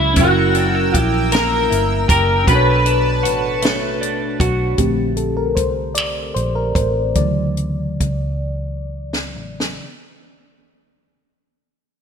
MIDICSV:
0, 0, Header, 1, 7, 480
1, 0, Start_track
1, 0, Key_signature, 2, "major"
1, 0, Tempo, 770218
1, 105, Time_signature, 6, 3, 24, 8
1, 3466, Tempo, 798935
1, 4426, Tempo, 862069
1, 5386, Tempo, 952381
1, 6965, End_track
2, 0, Start_track
2, 0, Title_t, "Analog synth pad"
2, 0, Program_c, 0, 89
2, 0, Note_on_c, 0, 73, 73
2, 0, Note_on_c, 0, 76, 77
2, 91, Note_off_c, 0, 73, 0
2, 95, Note_off_c, 0, 76, 0
2, 104, Note_on_c, 0, 79, 75
2, 104, Note_on_c, 0, 88, 93
2, 105, Note_on_c, 0, 70, 74
2, 1528, Note_off_c, 0, 79, 0
2, 1528, Note_off_c, 0, 88, 0
2, 1529, Note_off_c, 0, 70, 0
2, 1546, Note_on_c, 0, 71, 82
2, 1547, Note_on_c, 0, 81, 77
2, 2969, Note_off_c, 0, 71, 0
2, 2969, Note_off_c, 0, 81, 0
2, 6965, End_track
3, 0, Start_track
3, 0, Title_t, "Clean electric guitar"
3, 0, Program_c, 1, 27
3, 0, Note_on_c, 1, 64, 92
3, 87, Note_off_c, 1, 64, 0
3, 108, Note_on_c, 1, 66, 106
3, 619, Note_off_c, 1, 66, 0
3, 619, Note_on_c, 1, 64, 106
3, 824, Note_on_c, 1, 70, 98
3, 848, Note_off_c, 1, 64, 0
3, 1279, Note_off_c, 1, 70, 0
3, 1305, Note_on_c, 1, 70, 98
3, 1527, Note_off_c, 1, 70, 0
3, 1545, Note_on_c, 1, 71, 109
3, 2718, Note_off_c, 1, 71, 0
3, 6965, End_track
4, 0, Start_track
4, 0, Title_t, "FM electric piano"
4, 0, Program_c, 2, 5
4, 0, Control_c, 2, 64, 127
4, 0, Note_on_c, 2, 61, 58
4, 0, Note_on_c, 2, 64, 60
4, 0, Note_on_c, 2, 66, 55
4, 0, Note_on_c, 2, 69, 62
4, 68, Note_off_c, 2, 61, 0
4, 78, Note_off_c, 2, 64, 0
4, 85, Note_on_c, 2, 61, 56
4, 90, Note_off_c, 2, 66, 0
4, 105, Note_on_c, 2, 64, 57
4, 113, Control_c, 2, 64, 0
4, 121, Note_off_c, 2, 69, 0
4, 130, Note_on_c, 2, 79, 59
4, 153, Note_on_c, 2, 70, 69
4, 232, Control_c, 2, 64, 127
4, 1508, Note_off_c, 2, 61, 0
4, 1519, Note_off_c, 2, 64, 0
4, 1522, Note_on_c, 2, 61, 44
4, 1531, Note_off_c, 2, 79, 0
4, 1543, Note_off_c, 2, 70, 0
4, 1543, Note_on_c, 2, 66, 59
4, 1552, Control_c, 2, 64, 0
4, 1561, Note_on_c, 2, 62, 58
4, 1568, Note_on_c, 2, 69, 56
4, 1573, Note_off_c, 2, 61, 0
4, 1591, Note_on_c, 2, 73, 76
4, 1667, Control_c, 2, 64, 127
4, 2734, Note_off_c, 2, 66, 0
4, 2742, Note_on_c, 2, 66, 86
4, 2965, Note_off_c, 2, 66, 0
4, 2966, Note_off_c, 2, 62, 0
4, 2969, Note_off_c, 2, 69, 0
4, 2979, Note_on_c, 2, 67, 65
4, 2981, Note_off_c, 2, 73, 0
4, 2982, Note_on_c, 2, 50, 48
4, 2986, Note_on_c, 2, 57, 37
4, 2989, Note_on_c, 2, 60, 49
4, 2990, Control_c, 2, 64, 0
4, 3086, Control_c, 2, 64, 127
4, 3220, Note_on_c, 2, 69, 64
4, 3228, Note_off_c, 2, 67, 0
4, 3345, Note_on_c, 2, 70, 76
4, 3346, Note_off_c, 2, 69, 0
4, 3461, Note_on_c, 2, 72, 67
4, 3469, Note_off_c, 2, 70, 0
4, 3676, Note_off_c, 2, 50, 0
4, 3678, Note_off_c, 2, 57, 0
4, 3680, Note_off_c, 2, 60, 0
4, 3682, Note_off_c, 2, 72, 0
4, 3697, Note_on_c, 2, 74, 80
4, 3936, Note_on_c, 2, 72, 77
4, 3944, Note_off_c, 2, 74, 0
4, 4049, Note_off_c, 2, 72, 0
4, 4062, Note_on_c, 2, 70, 83
4, 4180, Note_on_c, 2, 72, 79
4, 4185, Note_off_c, 2, 70, 0
4, 4408, Note_off_c, 2, 72, 0
4, 4425, Note_on_c, 2, 52, 41
4, 4427, Note_on_c, 2, 74, 73
4, 4428, Note_on_c, 2, 54, 41
4, 4431, Note_on_c, 2, 49, 50
4, 4433, Control_c, 2, 64, 0
4, 4536, Control_c, 2, 64, 127
4, 5114, Note_off_c, 2, 52, 0
4, 5116, Note_off_c, 2, 54, 0
4, 5117, Note_off_c, 2, 49, 0
4, 5598, Note_off_c, 2, 74, 0
4, 5863, Control_c, 2, 64, 0
4, 6965, End_track
5, 0, Start_track
5, 0, Title_t, "Clean electric guitar"
5, 0, Program_c, 3, 27
5, 0, Note_on_c, 3, 50, 87
5, 0, Note_on_c, 3, 54, 73
5, 0, Note_on_c, 3, 61, 63
5, 0, Note_on_c, 3, 64, 51
5, 99, Note_off_c, 3, 54, 0
5, 101, Note_on_c, 3, 54, 87
5, 104, Note_off_c, 3, 50, 0
5, 156, Note_off_c, 3, 64, 0
5, 343, Note_on_c, 3, 62, 61
5, 362, Note_off_c, 3, 61, 0
5, 466, Note_off_c, 3, 62, 0
5, 466, Note_on_c, 3, 64, 51
5, 584, Note_on_c, 3, 67, 67
5, 821, Note_on_c, 3, 58, 63
5, 1052, Note_off_c, 3, 64, 0
5, 1059, Note_on_c, 3, 64, 57
5, 1290, Note_off_c, 3, 67, 0
5, 1298, Note_on_c, 3, 67, 65
5, 1544, Note_on_c, 3, 47, 85
5, 1589, Note_off_c, 3, 64, 0
5, 1589, Note_off_c, 3, 67, 0
5, 1590, Note_off_c, 3, 58, 0
5, 1777, Note_on_c, 3, 62, 68
5, 2014, Note_on_c, 3, 66, 66
5, 2258, Note_on_c, 3, 57, 69
5, 2283, Note_off_c, 3, 54, 0
5, 2496, Note_off_c, 3, 62, 0
5, 2499, Note_on_c, 3, 62, 61
5, 2738, Note_off_c, 3, 66, 0
5, 2745, Note_on_c, 3, 66, 71
5, 2982, Note_off_c, 3, 47, 0
5, 3031, Note_off_c, 3, 66, 0
5, 3343, Note_off_c, 3, 57, 0
5, 3343, Note_off_c, 3, 62, 0
5, 6965, End_track
6, 0, Start_track
6, 0, Title_t, "Fingered electric bass"
6, 0, Program_c, 4, 33
6, 0, Note_on_c, 4, 37, 85
6, 107, Note_on_c, 4, 30, 99
6, 117, Note_off_c, 4, 37, 0
6, 561, Note_off_c, 4, 30, 0
6, 594, Note_on_c, 4, 34, 92
6, 1044, Note_off_c, 4, 34, 0
6, 1071, Note_on_c, 4, 31, 75
6, 1283, Note_off_c, 4, 31, 0
6, 1307, Note_on_c, 4, 30, 96
6, 1521, Note_off_c, 4, 30, 0
6, 1548, Note_on_c, 4, 35, 107
6, 2028, Note_off_c, 4, 35, 0
6, 2028, Note_on_c, 4, 33, 91
6, 2720, Note_off_c, 4, 33, 0
6, 2746, Note_on_c, 4, 35, 95
6, 2960, Note_off_c, 4, 35, 0
6, 2983, Note_on_c, 4, 34, 89
6, 3474, Note_off_c, 4, 34, 0
6, 3474, Note_on_c, 4, 36, 83
6, 3919, Note_off_c, 4, 36, 0
6, 3946, Note_on_c, 4, 34, 72
6, 4160, Note_off_c, 4, 34, 0
6, 4185, Note_on_c, 4, 33, 79
6, 4404, Note_off_c, 4, 33, 0
6, 4428, Note_on_c, 4, 38, 93
6, 4873, Note_off_c, 4, 38, 0
6, 4901, Note_on_c, 4, 37, 78
6, 5624, Note_off_c, 4, 37, 0
6, 5624, Note_on_c, 4, 33, 74
6, 5839, Note_off_c, 4, 33, 0
6, 6965, End_track
7, 0, Start_track
7, 0, Title_t, "Drums"
7, 99, Note_on_c, 9, 42, 78
7, 103, Note_on_c, 9, 36, 102
7, 162, Note_off_c, 9, 42, 0
7, 166, Note_off_c, 9, 36, 0
7, 341, Note_on_c, 9, 42, 53
7, 403, Note_off_c, 9, 42, 0
7, 588, Note_on_c, 9, 36, 81
7, 590, Note_on_c, 9, 42, 83
7, 651, Note_off_c, 9, 36, 0
7, 652, Note_off_c, 9, 42, 0
7, 822, Note_on_c, 9, 42, 82
7, 840, Note_on_c, 9, 38, 115
7, 885, Note_off_c, 9, 42, 0
7, 902, Note_off_c, 9, 38, 0
7, 1073, Note_on_c, 9, 42, 65
7, 1136, Note_off_c, 9, 42, 0
7, 1303, Note_on_c, 9, 36, 116
7, 1306, Note_on_c, 9, 42, 86
7, 1365, Note_off_c, 9, 36, 0
7, 1368, Note_off_c, 9, 42, 0
7, 1542, Note_on_c, 9, 36, 101
7, 1543, Note_on_c, 9, 42, 67
7, 1605, Note_off_c, 9, 36, 0
7, 1606, Note_off_c, 9, 42, 0
7, 1781, Note_on_c, 9, 42, 54
7, 1843, Note_off_c, 9, 42, 0
7, 2027, Note_on_c, 9, 42, 74
7, 2089, Note_off_c, 9, 42, 0
7, 2258, Note_on_c, 9, 42, 75
7, 2275, Note_on_c, 9, 38, 97
7, 2320, Note_off_c, 9, 42, 0
7, 2338, Note_off_c, 9, 38, 0
7, 2510, Note_on_c, 9, 42, 54
7, 2572, Note_off_c, 9, 42, 0
7, 2742, Note_on_c, 9, 36, 111
7, 2747, Note_on_c, 9, 42, 88
7, 2804, Note_off_c, 9, 36, 0
7, 2809, Note_off_c, 9, 42, 0
7, 2979, Note_on_c, 9, 42, 72
7, 2981, Note_on_c, 9, 36, 79
7, 3042, Note_off_c, 9, 42, 0
7, 3043, Note_off_c, 9, 36, 0
7, 3220, Note_on_c, 9, 42, 44
7, 3283, Note_off_c, 9, 42, 0
7, 3469, Note_on_c, 9, 36, 71
7, 3471, Note_on_c, 9, 42, 61
7, 3529, Note_off_c, 9, 36, 0
7, 3531, Note_off_c, 9, 42, 0
7, 3699, Note_on_c, 9, 42, 58
7, 3716, Note_on_c, 9, 26, 89
7, 3759, Note_off_c, 9, 42, 0
7, 3776, Note_off_c, 9, 26, 0
7, 3948, Note_on_c, 9, 42, 55
7, 4008, Note_off_c, 9, 42, 0
7, 4181, Note_on_c, 9, 36, 91
7, 4185, Note_on_c, 9, 42, 73
7, 4241, Note_off_c, 9, 36, 0
7, 4245, Note_off_c, 9, 42, 0
7, 4422, Note_on_c, 9, 42, 58
7, 4424, Note_on_c, 9, 36, 87
7, 4478, Note_off_c, 9, 42, 0
7, 4480, Note_off_c, 9, 36, 0
7, 4655, Note_on_c, 9, 42, 42
7, 4711, Note_off_c, 9, 42, 0
7, 4897, Note_on_c, 9, 36, 73
7, 4897, Note_on_c, 9, 42, 54
7, 4952, Note_off_c, 9, 42, 0
7, 4953, Note_off_c, 9, 36, 0
7, 5512, Note_on_c, 9, 38, 52
7, 5562, Note_off_c, 9, 38, 0
7, 5748, Note_on_c, 9, 38, 66
7, 5798, Note_off_c, 9, 38, 0
7, 6965, End_track
0, 0, End_of_file